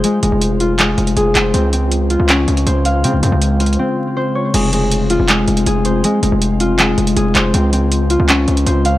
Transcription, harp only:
\new Staff \with { instrumentName = "Harp" } { \time 4/4 \key f \minor \tempo 4 = 160 <aes f' aes' c''>8 aes4 f'8 aes4 aes'8 c''8 | c'8 c'4 f'8 des'4 c''8 f''8 | c'8 c'4 f'8 c'4 c''8 des''8 | aes8 aes4 f'8 aes4 aes'8 c''8 |
aes8 aes4 f'8 aes4 aes'8 c''8 | c'8 c'4 f'8 des'4 c''8 f''8 | }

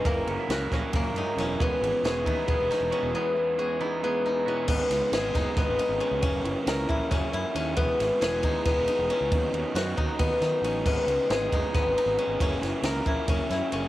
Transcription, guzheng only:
\new Staff \with { instrumentName = "Guzheng" } { \time 7/8 \key e \lydian \tempo 4 = 136 ais4 fis'8 cis'8 ais8 dis'8 cis'8 | b4 gis'8 dis'8 b8 dis'8 cis'8 | b4 gis'8 dis'8 b8 dis'8 cis'8 | b4 gis'8 dis'8 b8 dis'8 cis'8 |
cis'4 ais'8 e'8 cis'8 e'8 cis'8 | b4 gis'8 dis'8 b8 dis'8 cis'8 | r4 fis'8 dis'8 b8 dis'8 cis'8 | b4 gis'8 dis'8 b8 dis'8 cis'8 |
cis'4 ais'8 e'8 cis'8 e'8 cis'8 | }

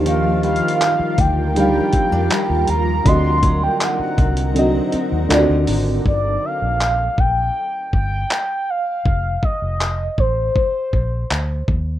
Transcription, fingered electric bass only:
\new Staff \with { instrumentName = "Fingered electric bass" } { \clef bass \time 4/4 \key g \minor \tempo 4 = 80 ees,4 r8 d,4 r16 f,16 r16 ees,16 ees,8 | d,4 r8 c,4 r16 ees,16 d,16 d,16 aes,,8 | g,,8 r16 bes,,8. bes,,8 r8 g,,8 r4 | f,,8 r16 f,,8. a,,8 r8 bes,,8 d,8 ees,8 | }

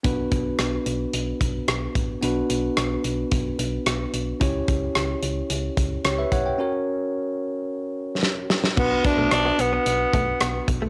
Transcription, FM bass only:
\new Staff \with { instrumentName = "FM bass" } { \clef bass \time 4/4 \key b \minor \tempo 4 = 110 b,,8 b,,8 b,,8 b,,8 b,,8 b,,8 b,,8 a,,8 | b,,8 b,,8 b,,8 b,,8 b,,8 b,,8 b,,8 b,,8 | cis,8 cis,8 cis,8 cis,8 cis,8 cis,8 cis,8 b,,8 | r1 |
b,,8 r16 b,,16 b,,8 b,,8 b,,8 b,,8 b,,8 b,,8 | }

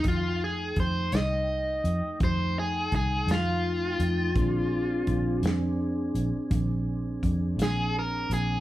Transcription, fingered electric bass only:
\new Staff \with { instrumentName = "Fingered electric bass" } { \clef bass \time 12/8 \key bes \major \tempo 4. = 56 f,4 f,8 c,4 f,16 r16 f,4 c,8 f,4 f,8 | bes,,4 bes,,8 f,4 bes,,16 r16 bes,,4 f,8 bes,,4 bes,,8 | }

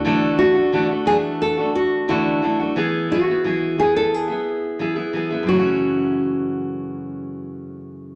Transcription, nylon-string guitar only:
\new Staff \with { instrumentName = "Nylon-string guitar" } { \time 4/4 \key fis \minor \tempo 4 = 88 r8 fis'4 gis'8 a'8 fis'8 e'8. r16 | r8 fis'4 gis'16 a'16 gis'4. r8 | fis'1 | }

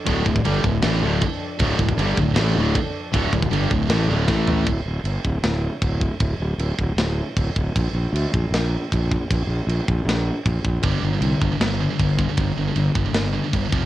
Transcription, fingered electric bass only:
\new Staff \with { instrumentName = "Fingered electric bass" } { \clef bass \time 4/4 \key g \dorian \tempo 4 = 156 d,,8 d,,8 g,,8 d,,8 a,,8 d,,8 r4 | d,,8 d,,8 g,,8 d,,8 a,,8 d,,8 r4 | d,,8 d,,8 g,,8 d,,8 a,,8 d,,8 a,,4 | d,,8 d,,8 g,,8 d,,8 d,,4 d,,4 |
d,,8 d,,8 d,,8 d,,8 d,,4 d,,8 d,,8 | bes,,8 bes,,8 d,8 bes,,8 bes,,4 bes,,4 | bes,,8 bes,,8 bes,,8 bes,,8 bes,,4 bes,,8 bes,,8 | g,,8 g,,8 c,8 g,,8 g,,4 g,,4 |
g,,8 g,,8 g,,8 g,,8 g,,4 g,,8 f,,8 | }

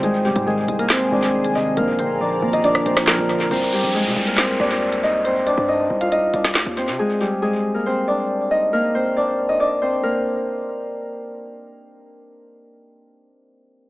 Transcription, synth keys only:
\new Staff \with { instrumentName = "Synth keys" } { \clef bass \time 4/4 \key c \minor \tempo 4 = 138 aes,8 c8 ees8 aes8 c'8 aes8 ees8 c8 | bes,8 d8 f8 bes8 d'8 bes8 f8 d8 | r1 | r1 |
r1 | r1 | r1 | r1 | }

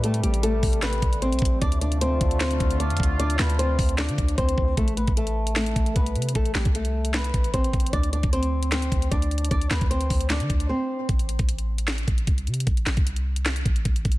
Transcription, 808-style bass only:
\new Staff \with { instrumentName = "808-style bass" } { \clef bass \time 4/4 \key a \minor \tempo 4 = 152 a,8 a,,4 a,,4 a,,8. b,,16 a,,8 | d,4. d,4 d,8. f,16 d,8~ | d,8 d,4 d,8. d16 d,8 d,8 d,8 | a,,8. a,,4.~ a,,16 a,,8 c,8 c8 |
a,,8 a,,16 c,4.~ c,16 a,,8 a,,8 a,,8 | d,8. d,4.~ d,16 d,8 d,4 | d,8 d,16 d,8. d,8. d16 d,8 r4 | a,,8. a,,4.~ a,,16 a,,8 c,8 c8 |
a,,8 a,,16 c,4.~ c,16 a,,8 a,,8 a,,8 | }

